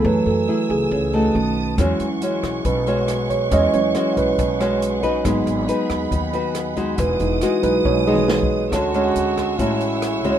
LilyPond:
<<
  \new Staff \with { instrumentName = "String section" } { \time 4/4 \key e \major \tempo 4 = 138 << { e'''2. dis'''4 | cis'''1~ | cis'''1 | b''1 |
dis'''1 | \key d \lydian <gis' e'''>1 | } \\ { gis''2. <b' a''>4 | <gis' fis''>1~ | <gis' fis''>1~ | <gis' fis''>1~ |
<gis' fis''>1 | <fis'' cis'''>1 | } >> }
  \new Staff \with { instrumentName = "Trombone" } { \time 4/4 \key e \major r1 | r1 | r1 | r1 |
r1 | \key d \lydian fis'2 e'2 | }
  \new Staff \with { instrumentName = "Tine electric piano" } { \time 4/4 \key e \major b'8 a'4 gis'4 r4. | r2 b'4. cis''8 | dis''8 cis''4 b'4 r4. | r1 |
b'8 dis'8 fis'8 b'8 cis''8 gis'8 r4 | \key d \lydian r1 | }
  \new Staff \with { instrumentName = "Tine electric piano" } { \clef bass \time 4/4 \key e \major <e a>8 r2 r8 <dis a cis'>4 | <fis gis cis'>8 r2. r8 | r8 <fis gis cis'>8 r2. | <fis b dis'>4. r2 r8 |
r4. <fis gis dis'>4. r4 | \key d \lydian r1 | }
  \new Staff \with { instrumentName = "Nylon-string guitar" } { \time 4/4 \key e \major << { <a e' gis'>4 <a e' gis'>4. <a dis' fis'>4. | <gis cis' fis'>8 r8 <gis cis' fis'>4 r8 <gis cis' fis'>4. | <gis cis' fis'>8 r8 <gis cis' fis'>4 r8 <gis cis' fis'>4 <dis' fis' b'>8~ | <dis' fis' b'>4 <dis' fis' b'>4. <dis' fis' b'>4 <gis dis' fis'>8~ |
<gis dis' fis'>4 <gis dis' fis'>4. <gis dis' fis'>4. | \key d \lydian <gis cis' fis'>8 <gis cis' fis'>4. <gis cis' fis'>4. <gis cis' fis'>8 | } \\ { fis2 cis4 r4 | e2 b,2 | e2 b,2 | gis2 dis2 |
e2 b,2 | d2 a,2 | } >> }
  \new Staff \with { instrumentName = "Upright bass" } { \clef bass \time 4/4 \key e \major fis,8 fis,8 r8 cis,8 cis,4 b,,4 | e,8 e,8 r8 b,,8 b,,2 | e,8 e,8 r8 b,,8 b,,2 | gis,,8 gis,,8 r8 dis,8 dis,2 |
e,,8 e,,8 r8 b,,8 b,,2 | \key d \lydian d,4 d,4 a,,4. d,8 | }
  \new DrumStaff \with { instrumentName = "Drums" } \drummode { \time 4/4 r4 r4 r4 r4 | <hh bd ss>8 hh8 hh8 <hh bd ss>8 <hh bd>8 hh8 <hh ss>8 <hh bd>8 | <hh bd>8 hh8 <hh ss>8 <hh bd>8 <hh bd>8 <hh ss>8 hh8 <hh bd>8 | <hh bd ss>8 hh8 hh8 <hh bd ss>8 <hh bd>8 hh8 <hh ss>8 <hh bd>8 |
<hh bd>8 hh8 <hh ss>8 <hh bd>8 \tuplet 3/2 { <bd tommh>8 r8 toml8 sn8 bd8 r8 } | <hh bd ss>8 hh8 hh8 <hh bd ss>8 <hh bd>8 hh8 <hh ss>8 <hh bd>8 | }
>>